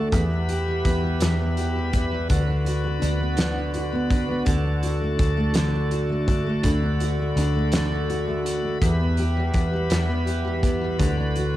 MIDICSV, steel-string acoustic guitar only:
0, 0, Header, 1, 2, 480
1, 0, Start_track
1, 0, Key_signature, 2, "major"
1, 0, Tempo, 724638
1, 84, Time_signature, 6, 3, 24, 8
1, 7662, End_track
2, 0, Start_track
2, 0, Title_t, "Steel-string acoustic guitar"
2, 0, Program_c, 0, 25
2, 0, Note_on_c, 0, 50, 82
2, 0, Note_on_c, 0, 57, 61
2, 0, Note_on_c, 0, 62, 60
2, 0, Note_on_c, 0, 66, 64
2, 78, Note_on_c, 0, 40, 84
2, 131, Note_off_c, 0, 50, 0
2, 131, Note_off_c, 0, 66, 0
2, 132, Note_off_c, 0, 57, 0
2, 132, Note_off_c, 0, 62, 0
2, 202, Note_on_c, 0, 59, 58
2, 324, Note_on_c, 0, 67, 59
2, 449, Note_on_c, 0, 55, 62
2, 570, Note_off_c, 0, 59, 0
2, 572, Note_on_c, 0, 59, 60
2, 679, Note_off_c, 0, 55, 0
2, 687, Note_on_c, 0, 55, 55
2, 797, Note_off_c, 0, 40, 0
2, 805, Note_on_c, 0, 40, 85
2, 930, Note_off_c, 0, 59, 0
2, 933, Note_on_c, 0, 59, 59
2, 1037, Note_off_c, 0, 67, 0
2, 1045, Note_on_c, 0, 67, 60
2, 1154, Note_off_c, 0, 55, 0
2, 1162, Note_on_c, 0, 55, 60
2, 1277, Note_off_c, 0, 59, 0
2, 1279, Note_on_c, 0, 59, 58
2, 1393, Note_off_c, 0, 55, 0
2, 1401, Note_on_c, 0, 55, 56
2, 1518, Note_on_c, 0, 50, 87
2, 1570, Note_off_c, 0, 55, 0
2, 1571, Note_off_c, 0, 40, 0
2, 1572, Note_off_c, 0, 67, 0
2, 1636, Note_off_c, 0, 59, 0
2, 1638, Note_on_c, 0, 62, 54
2, 1753, Note_on_c, 0, 66, 59
2, 1881, Note_on_c, 0, 59, 58
2, 1993, Note_off_c, 0, 62, 0
2, 1996, Note_on_c, 0, 62, 60
2, 2113, Note_off_c, 0, 59, 0
2, 2121, Note_on_c, 0, 59, 57
2, 2238, Note_off_c, 0, 50, 0
2, 2240, Note_on_c, 0, 50, 82
2, 2355, Note_off_c, 0, 62, 0
2, 2357, Note_on_c, 0, 62, 57
2, 2479, Note_off_c, 0, 66, 0
2, 2482, Note_on_c, 0, 66, 58
2, 2592, Note_off_c, 0, 59, 0
2, 2600, Note_on_c, 0, 59, 54
2, 2717, Note_off_c, 0, 62, 0
2, 2720, Note_on_c, 0, 62, 61
2, 2831, Note_off_c, 0, 59, 0
2, 2839, Note_on_c, 0, 59, 53
2, 2947, Note_off_c, 0, 50, 0
2, 2950, Note_on_c, 0, 50, 86
2, 3008, Note_off_c, 0, 59, 0
2, 3074, Note_off_c, 0, 62, 0
2, 3077, Note_on_c, 0, 62, 55
2, 3199, Note_off_c, 0, 66, 0
2, 3201, Note_on_c, 0, 66, 55
2, 3319, Note_on_c, 0, 57, 56
2, 3430, Note_off_c, 0, 62, 0
2, 3438, Note_on_c, 0, 62, 58
2, 3550, Note_off_c, 0, 57, 0
2, 3558, Note_on_c, 0, 57, 58
2, 3666, Note_off_c, 0, 50, 0
2, 3674, Note_on_c, 0, 50, 82
2, 3784, Note_off_c, 0, 62, 0
2, 3792, Note_on_c, 0, 62, 57
2, 3907, Note_off_c, 0, 66, 0
2, 3915, Note_on_c, 0, 66, 60
2, 4029, Note_off_c, 0, 57, 0
2, 4037, Note_on_c, 0, 57, 56
2, 4152, Note_off_c, 0, 62, 0
2, 4160, Note_on_c, 0, 62, 62
2, 4274, Note_off_c, 0, 57, 0
2, 4282, Note_on_c, 0, 57, 55
2, 4396, Note_off_c, 0, 50, 0
2, 4404, Note_on_c, 0, 50, 81
2, 4515, Note_off_c, 0, 62, 0
2, 4523, Note_on_c, 0, 62, 56
2, 4635, Note_off_c, 0, 66, 0
2, 4643, Note_on_c, 0, 66, 64
2, 4756, Note_off_c, 0, 57, 0
2, 4764, Note_on_c, 0, 57, 62
2, 4882, Note_off_c, 0, 62, 0
2, 4889, Note_on_c, 0, 62, 64
2, 4998, Note_off_c, 0, 57, 0
2, 5006, Note_on_c, 0, 57, 59
2, 5123, Note_off_c, 0, 50, 0
2, 5130, Note_on_c, 0, 50, 85
2, 5238, Note_off_c, 0, 62, 0
2, 5245, Note_on_c, 0, 62, 63
2, 5356, Note_off_c, 0, 66, 0
2, 5364, Note_on_c, 0, 66, 60
2, 5473, Note_off_c, 0, 57, 0
2, 5481, Note_on_c, 0, 57, 56
2, 5601, Note_off_c, 0, 62, 0
2, 5609, Note_on_c, 0, 62, 56
2, 5719, Note_off_c, 0, 57, 0
2, 5727, Note_on_c, 0, 57, 56
2, 5842, Note_on_c, 0, 40, 84
2, 5891, Note_off_c, 0, 66, 0
2, 5892, Note_off_c, 0, 57, 0
2, 5893, Note_off_c, 0, 62, 0
2, 5894, Note_off_c, 0, 50, 0
2, 5967, Note_on_c, 0, 59, 62
2, 6088, Note_on_c, 0, 67, 63
2, 6206, Note_on_c, 0, 55, 61
2, 6322, Note_off_c, 0, 59, 0
2, 6324, Note_on_c, 0, 59, 59
2, 6439, Note_off_c, 0, 55, 0
2, 6446, Note_on_c, 0, 55, 58
2, 6554, Note_off_c, 0, 40, 0
2, 6562, Note_on_c, 0, 40, 85
2, 6681, Note_off_c, 0, 59, 0
2, 6684, Note_on_c, 0, 59, 64
2, 6790, Note_off_c, 0, 67, 0
2, 6798, Note_on_c, 0, 67, 63
2, 6912, Note_off_c, 0, 55, 0
2, 6920, Note_on_c, 0, 55, 62
2, 7042, Note_off_c, 0, 59, 0
2, 7044, Note_on_c, 0, 59, 58
2, 7154, Note_off_c, 0, 55, 0
2, 7162, Note_on_c, 0, 55, 61
2, 7279, Note_on_c, 0, 50, 87
2, 7329, Note_off_c, 0, 67, 0
2, 7330, Note_off_c, 0, 40, 0
2, 7330, Note_off_c, 0, 55, 0
2, 7396, Note_off_c, 0, 59, 0
2, 7399, Note_on_c, 0, 62, 59
2, 7526, Note_on_c, 0, 66, 57
2, 7642, Note_on_c, 0, 59, 60
2, 7662, Note_off_c, 0, 50, 0
2, 7662, Note_off_c, 0, 59, 0
2, 7662, Note_off_c, 0, 62, 0
2, 7662, Note_off_c, 0, 66, 0
2, 7662, End_track
0, 0, End_of_file